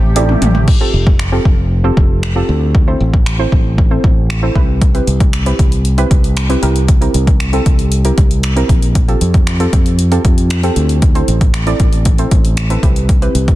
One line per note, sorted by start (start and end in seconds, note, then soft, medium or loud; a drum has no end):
0.00 0.34 A1 medium
0.00 0.64 C3 medium
0.00 0.66 A3 medium
0.00 0.66 G4 medium
0.16 0.47 C4 medium
0.16 0.47 E4 medium
0.16 0.47 G4 medium
0.16 0.47 A4 medium
0.16 0.47 D5 loud
0.16 closed hi-hat loud
0.16 high tom medium
0.29 mid tom medium
0.42 0.64 A1 medium
0.42 closed hi-hat medium
0.42 mid tom loud
0.55 floor tom loud
0.68 kick loud
0.68 crash medium
0.81 1.11 C4 medium
0.81 1.11 F4 medium
0.81 1.11 G4 medium
0.81 1.12 A4 medium
0.94 1.38 F1 medium
1.07 kick medium
1.19 finger snap loud
1.32 1.63 C4 medium
1.32 1.63 F4 medium
1.32 1.63 G4 medium
1.32 1.63 A4 medium
1.45 1.89 F1 medium
1.45 kick medium
1.84 2.15 C4 medium
1.84 2.15 F4 medium
1.84 2.15 G4 medium
1.84 2.15 A4 loud
1.97 2.41 F1 medium
1.97 kick medium
2.23 finger snap loud
2.36 2.66 C4 medium
2.36 2.66 F4 medium
2.36 2.67 G4 medium
2.36 2.67 A4 loud
2.49 2.93 D2 medium
2.75 kick loud
2.87 3.18 C4 medium
2.87 3.18 E4 medium
2.87 3.18 A4 medium
2.87 3.18 C5 loud
3.00 3.44 A1 medium
3.14 kick loud
3.26 finger snap loud
3.39 3.70 C4 medium
3.39 3.70 E4 medium
3.39 3.70 A4 medium
3.39 3.70 C5 loud
3.52 3.96 A1 medium
3.52 kick medium
3.78 kick medium
3.91 4.22 C4 medium
3.91 4.22 E4 medium
3.91 4.22 A4 medium
3.91 4.22 C5 medium
4.04 4.48 A1 medium
4.04 kick medium
4.30 finger snap loud
4.42 4.54 C4 medium
4.42 4.54 E4 medium
4.42 4.56 A4 medium
4.42 4.56 C5 loud
4.55 5.00 C2 medium
4.55 4.87 C4 medium
4.55 4.87 E4 medium
4.55 4.87 G4 medium
4.55 4.87 B4 loud
4.55 kick medium
4.82 kick loud
4.82 closed hi-hat medium
4.94 5.25 C4 medium
4.94 5.25 E4 medium
4.94 5.25 G4 medium
4.94 5.25 B4 medium
4.94 closed hi-hat soft
5.07 5.51 C2 medium
5.07 closed hi-hat medium
5.20 kick loud
5.20 closed hi-hat soft
5.33 finger snap loud
5.33 closed hi-hat medium
5.46 5.77 C4 medium
5.46 5.77 E4 medium
5.46 5.77 G4 medium
5.46 5.77 B4 medium
5.46 closed hi-hat soft
5.59 6.03 C2 medium
5.59 kick medium
5.59 closed hi-hat medium
5.72 closed hi-hat medium
5.85 closed hi-hat medium
5.98 6.29 C4 medium
5.98 6.29 E4 medium
5.98 6.29 G4 medium
5.98 6.29 B4 loud
5.98 closed hi-hat medium
6.11 6.55 C2 medium
6.11 kick medium
6.11 closed hi-hat medium
6.24 closed hi-hat medium
6.37 finger snap loud
6.37 closed hi-hat medium
6.49 6.61 C4 loud
6.49 6.61 E4 medium
6.49 6.61 G4 medium
6.49 6.63 B4 loud
6.49 closed hi-hat medium
6.62 7.07 C2 medium
6.62 6.93 C4 medium
6.62 6.94 E4 medium
6.62 6.94 G4 medium
6.62 6.94 A#4 loud
6.62 closed hi-hat medium
6.76 closed hi-hat soft
6.88 kick loud
6.88 closed hi-hat loud
7.01 7.32 C4 medium
7.01 7.32 E4 medium
7.01 7.32 G4 medium
7.01 7.32 A#4 loud
7.01 closed hi-hat soft
7.14 7.58 C2 medium
7.14 closed hi-hat medium
7.27 kick loud
7.27 closed hi-hat soft
7.40 finger snap loud
7.40 closed hi-hat loud
7.53 7.84 C4 loud
7.53 7.84 E4 medium
7.53 7.84 G4 medium
7.53 7.84 A4 loud
7.53 closed hi-hat soft
7.66 8.10 C2 medium
7.66 kick medium
7.66 closed hi-hat medium
7.79 closed hi-hat medium
7.92 closed hi-hat medium
8.05 8.35 C4 medium
8.05 8.35 E4 medium
8.05 8.36 G4 medium
8.05 8.36 A#4 medium
8.05 closed hi-hat medium
8.18 8.62 C2 medium
8.18 kick medium
8.18 closed hi-hat medium
8.31 closed hi-hat medium
8.43 finger snap loud
8.43 closed hi-hat medium
8.56 8.87 C4 medium
8.56 8.87 E4 medium
8.56 8.87 G4 medium
8.56 8.87 A#4 loud
8.56 closed hi-hat medium
8.69 9.13 A#1 medium
8.69 kick medium
8.69 closed hi-hat medium
8.82 closed hi-hat medium
8.95 kick loud
8.95 closed hi-hat loud
9.08 9.39 C4 medium
9.08 9.39 F4 medium
9.08 9.39 G4 medium
9.08 9.39 A4 medium
9.08 closed hi-hat soft
9.21 9.65 F2 medium
9.21 closed hi-hat medium
9.34 kick loud
9.34 closed hi-hat soft
9.47 finger snap loud
9.47 closed hi-hat loud
9.60 9.91 C4 medium
9.60 9.91 F4 medium
9.60 9.91 G4 medium
9.60 9.91 A4 loud
9.60 closed hi-hat soft
9.73 10.17 F2 medium
9.73 kick medium
9.73 closed hi-hat medium
9.86 closed hi-hat medium
9.99 closed hi-hat medium
10.11 10.42 C4 medium
10.11 10.42 F4 medium
10.11 10.42 G4 medium
10.11 10.43 A4 loud
10.11 closed hi-hat soft
10.25 10.69 F2 medium
10.25 kick loud
10.25 closed hi-hat medium
10.38 closed hi-hat medium
10.50 finger snap loud
10.50 closed hi-hat medium
10.63 10.94 C4 loud
10.63 10.94 F4 medium
10.63 10.94 G4 medium
10.63 10.94 A4 loud
10.63 closed hi-hat medium
10.76 11.20 D2 medium
10.76 closed hi-hat medium
10.89 closed hi-hat medium
11.02 kick loud
11.02 closed hi-hat loud
11.15 11.46 C4 medium
11.15 11.46 E4 medium
11.15 11.46 A4 medium
11.15 11.46 C5 loud
11.15 closed hi-hat soft
11.28 11.72 A1 loud
11.28 closed hi-hat medium
11.41 kick loud
11.41 closed hi-hat soft
11.54 finger snap loud
11.54 closed hi-hat medium
11.67 11.97 C4 loud
11.67 11.98 E4 medium
11.67 11.98 A4 medium
11.67 11.98 D5 loud
11.67 closed hi-hat soft
11.80 12.24 A1 medium
11.80 kick medium
11.80 closed hi-hat medium
11.93 closed hi-hat medium
12.05 kick medium
12.05 closed hi-hat medium
12.18 12.49 C4 medium
12.18 12.49 E4 medium
12.18 12.49 A4 medium
12.18 12.49 C5 loud
12.18 closed hi-hat medium
12.31 12.75 A1 medium
12.31 kick medium
12.31 closed hi-hat medium
12.45 closed hi-hat medium
12.57 finger snap loud
12.57 closed hi-hat medium
12.70 12.82 C4 medium
12.70 12.82 E4 medium
12.70 12.83 A4 medium
12.70 12.82 B4 loud
12.70 closed hi-hat medium
12.83 13.27 C2 medium
12.83 13.14 C4 medium
12.83 13.14 E4 medium
12.83 13.14 G4 medium
12.83 13.14 B4 loud
12.83 kick medium
12.83 closed hi-hat medium
12.96 closed hi-hat medium
13.09 kick loud
13.09 closed hi-hat loud
13.22 13.53 C4 medium
13.22 13.53 E4 medium
13.22 13.53 G4 medium
13.22 13.53 B4 loud
13.22 closed hi-hat soft
13.35 13.55 C2 medium
13.35 closed hi-hat medium
13.48 kick loud
13.48 closed hi-hat soft